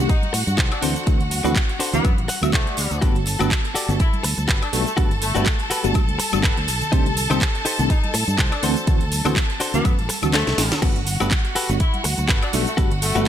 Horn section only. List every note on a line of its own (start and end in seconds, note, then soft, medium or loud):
0.09 0.31 D#4 medium
0.71 0.80 D4 medium
1.93 2.15 B3 medium
2.53 3.08 A3 medium
4.00 4.22 E4 medium
4.62 4.71 D4 medium
4.73 4.82 A3 medium
4.86 4.93 A3 medium
5.22 5.71 A3 medium
7.90 8.12 D#4 medium
8.52 8.61 D4 medium
9.74 9.95 B3 loud
10.34 10.88 A3 medium
11.80 12.02 E4 medium
12.43 12.51 D4 medium
12.53 12.62 A3 medium
12.67 12.74 A3 medium
13.02 13.28 A3 medium